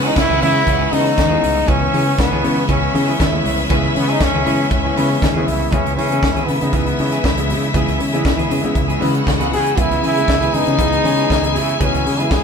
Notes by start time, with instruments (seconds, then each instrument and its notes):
Already playing: grand piano C#3 E3 G#3 B3 D#4 E4, string section C#4 B4 C#5 F#5 G#5 C#6 E6
0.03 clean electric guitar B3 E4 G#4, trombone D#4
0.16 fingered electric bass C#2, trombone E4, muted clean electric guitar stroke, kick, snare, closed hi-hat, muted conga
0.28 fingered electric bass C#2, clean electric guitar B3 E4 G#4, muted conga, high conga
0.40 grand piano C#3 E3 G#3 B3 E4, fingered electric bass C#3, clean electric guitar B3 E4 G#4, trombone E4, open hi-hat, high conga, low conga
0.54 muted clean electric guitar stroke
0.65 fingered electric bass C#2, muted clean electric guitar stroke, kick, closed hi-hat
0.78 clean electric guitar B3 E4 G#4
0.91 grand piano C#3 E3 G#3 B3 E4, fingered electric bass C#3, clean electric guitar B3 E4 B4, trombone D#4, open hi-hat, high conga
1.05 muted clean electric guitar stroke
1.17 fingered electric bass D#2, muted clean electric guitar stroke, kick, snare, closed hi-hat, muted conga, high conga
1.29 grand piano C#3 E3 G#3 B3 E4, clean electric guitar B3 E4 G#4
1.41 fingered electric bass C2, muted clean electric guitar stroke, open hi-hat, low conga
1.55 muted clean electric guitar stroke
1.66 fingered electric bass C#2, grand piano C#3 E3 G#3 B3 E4, clean electric guitar B3 E4 G#4, string section C#4 B4 E5, trombone C#4, kick, closed hi-hat, low conga
1.81 muted clean electric guitar stroke, muted conga, high conga
1.93 fingered electric bass C#3, clean electric guitar B3 E4 G#4, open hi-hat, high conga
2.06 clean electric guitar B3 E4 G#4
2.18 fingered electric bass C#2, trombone B3, muted clean electric guitar stroke, kick, snare, closed hi-hat, muted conga
2.31 fingered electric bass C#2, clean electric guitar B3 E4 G#4, high conga
2.43 grand piano C#3 E3 G#3 B3 E4, fingered electric bass C#3, clean electric guitar B3 E4 B4, open hi-hat, high conga, low conga
2.56 muted clean electric guitar stroke
2.68 fingered electric bass C#2, clean electric guitar B3 E4 G#4, trombone C#4, kick, closed hi-hat
2.81 muted clean electric guitar stroke
2.93 grand piano C#3 E3 G#3 B3 E4, fingered electric bass C#3, muted clean electric guitar stroke, open hi-hat, high conga
3.07 clean electric guitar B3 E4 G#4
3.19 fingered electric bass D#2, trombone E4, muted clean electric guitar stroke, kick, snare, closed hi-hat, muted conga, high conga
3.32 grand piano C#3 E3 G#3 B3 E4, muted clean electric guitar stroke, muted conga
3.44 fingered electric bass C2, open hi-hat, low conga
3.59 muted clean electric guitar stroke
3.69 fingered electric bass C#2, grand piano C#3 E3 G#3 B3 E4, clean electric guitar B3 E4 G#4, kick, closed hi-hat, low conga
3.83 muted conga, high conga
3.95 fingered electric bass C#3, trombone B3, muted clean electric guitar stroke, open hi-hat, high conga
4.08 clean electric guitar B3 E4 G#4, trombone D#4
4.20 fingered electric bass C#2, trombone C#4, muted clean electric guitar stroke, kick, snare, closed hi-hat
4.34 fingered electric bass C#2, clean electric guitar B3 E4 G#4, muted conga, high conga
4.46 grand piano C#3 E3 G#3 B3 E4, fingered electric bass C#3, clean electric guitar B3 E4 G#4, open hi-hat, high conga, low conga
4.59 muted clean electric guitar stroke
4.71 fingered electric bass C#2, trombone C#4, muted clean electric guitar stroke, kick, closed hi-hat, muted conga
4.85 clean electric guitar B3 E4 G#4
4.96 grand piano C#3 E3 G#3 B3 E4, fingered electric bass C#3, clean electric guitar B3 E4 B4, open hi-hat, high conga
5.09 muted clean electric guitar stroke
5.21 fingered electric bass D#2, muted clean electric guitar stroke, kick, snare, closed hi-hat, muted conga, high conga
5.34 grand piano C#3 E3 G#3 B3 E4, clean electric guitar B3 E4 G#4, muted conga
5.46 fingered electric bass C2, trombone E4, muted clean electric guitar stroke, open hi-hat, low conga
5.60 muted clean electric guitar stroke
5.71 fingered electric bass C#2, grand piano C#3 E3 G#3 B3 E4, clean electric guitar B3 E4 G#4, trombone C#4, string section E4 C#5 E5 G#5 B5 E6, kick, closed hi-hat, muted conga, low conga
5.85 fingered electric bass C#2, muted clean electric guitar stroke, closed hi-hat, muted conga
5.96 fingered electric bass C#3, clean electric guitar B3 E4 G#4, trombone C#4, open hi-hat, high conga
6.10 grand piano C#3 E3 G#3 B3 E4, clean electric guitar B3 E4 G#4, closed hi-hat
6.22 fingered electric bass C#2, muted clean electric guitar stroke, kick, snare, muted conga
6.36 clean electric guitar B3 E4 G#4, closed hi-hat, muted conga, high conga
6.47 fingered electric bass C#3, trombone B3, clean electric guitar B3 E4 B4, open hi-hat, high conga, low conga
6.56 trombone A3
6.61 grand piano C#3 E3 G#3 B3 D#4, fingered electric bass C#3, trombone B3, muted clean electric guitar stroke, closed hi-hat
6.72 fingered electric bass C#2, clean electric guitar B3 E4 G#4, kick, closed hi-hat, muted conga
6.86 muted clean electric guitar stroke, closed hi-hat
6.98 grand piano C#3 E3 G#3 B3 E4, fingered electric bass C#3, muted clean electric guitar stroke, open hi-hat, high conga
7.12 clean electric guitar B3 E4 G#4, closed hi-hat
7.23 fingered electric bass C#2, muted clean electric guitar stroke, kick, snare, muted conga, high conga
7.37 grand piano C#3 E3 G#3 B3 E4, muted clean electric guitar stroke, closed hi-hat, muted conga
7.48 fingered electric bass C#3, open hi-hat, low conga
7.62 muted clean electric guitar stroke, closed hi-hat
7.74 fingered electric bass C#2, grand piano C#3 E3 G#3 B3 E4, clean electric guitar B3 E4 G#4, kick, closed hi-hat, muted conga, low conga
7.88 fingered electric bass C#2, closed hi-hat
7.99 fingered electric bass C#3, muted clean electric guitar stroke, open hi-hat, high conga
8.12 grand piano C#3 E3 G#3 B3 E4, clean electric guitar B3 E4 G#4, closed hi-hat
8.24 fingered electric bass C#2, muted clean electric guitar stroke, kick, snare
8.37 clean electric guitar B3 E4 G#4, closed hi-hat, muted conga, high conga
8.49 fingered electric bass C#3, clean electric guitar B3 E4 G#4, open hi-hat, high conga, low conga
8.63 grand piano C#3 E3 G#3 B3 E4, fingered electric bass C#3, muted clean electric guitar stroke, closed hi-hat
8.75 fingered electric bass C#2, muted clean electric guitar stroke, kick, closed hi-hat, muted conga
8.88 clean electric guitar B3 E4 G#4, closed hi-hat
9.00 grand piano C#3 E3 G#3 B3 E4, fingered electric bass C#3, clean electric guitar B3 E4 B4, string section F#4 F#5, open hi-hat, high conga
9.13 muted clean electric guitar stroke, closed hi-hat
9.25 fingered electric bass C#2, muted clean electric guitar stroke, kick, snare, muted conga, high conga
9.39 grand piano C#3 E3 G#3 B3 E4, clean electric guitar B3 E4 G#4, closed hi-hat
9.51 fingered electric bass C#3, trombone G#4, muted clean electric guitar stroke, open hi-hat, low conga
9.65 muted clean electric guitar stroke, closed hi-hat
9.76 fingered electric bass C#2, grand piano C#3 E3 G#3 B3 E4, clean electric guitar B3 E4 G#4, trombone E4, string section G#4 G#5, kick, closed hi-hat, muted conga, low conga
9.91 fingered electric bass C#2, muted clean electric guitar stroke, closed hi-hat, muted conga
10.02 fingered electric bass C#3, clean electric guitar B3 E4 G#4, trombone E4, open hi-hat, high conga
10.16 grand piano C#3 E3 G#3 B3 E4, clean electric guitar B3 E4 G#4, closed hi-hat
10.28 fingered electric bass C#2, muted clean electric guitar stroke, kick, snare, muted conga
10.41 clean electric guitar B3 E4 G#4, closed hi-hat, high conga
10.53 fingered electric bass C#3, clean electric guitar B3 E4 B4, trombone D#4, open hi-hat, high conga, low conga
10.67 fingered electric bass C#3, grand piano C#3 E3 G#3 B3 E4, muted clean electric guitar stroke, closed hi-hat
10.78 fingered electric bass C#2, clean electric guitar B3 E4 G#4, kick, closed hi-hat, muted conga
10.92 muted clean electric guitar stroke, closed hi-hat, muted conga
11.04 grand piano C#3 E3 G#3 B3 C#4, fingered electric bass C#3, muted clean electric guitar stroke, open hi-hat, high conga
11.17 clean electric guitar B3 E4 G#4, closed hi-hat
11.29 fingered electric bass C#2, muted clean electric guitar stroke, kick, snare, muted conga, high conga
11.43 grand piano C#3 E3 G#3 B3 E4, muted clean electric guitar stroke, closed hi-hat, muted conga
11.55 fingered electric bass C#3, trombone E4, open hi-hat, low conga
11.68 muted clean electric guitar stroke, closed hi-hat
11.80 fingered electric bass C#2, grand piano C#3 E3 G#3 B3 F#4, clean electric guitar B3 E4 G#4, trombone C#4, kick, closed hi-hat, low conga
11.94 fingered electric bass C#2, closed hi-hat, muted conga, high conga
12.06 fingered electric bass C#3, muted clean electric guitar stroke, open hi-hat, high conga
12.19 grand piano C#3 E3 G#3 B3 E4, clean electric guitar B3 E4 G#4, trombone E4, closed hi-hat
12.30 fingered electric bass C#2, trombone G#4, muted clean electric guitar stroke, kick, snare, muted conga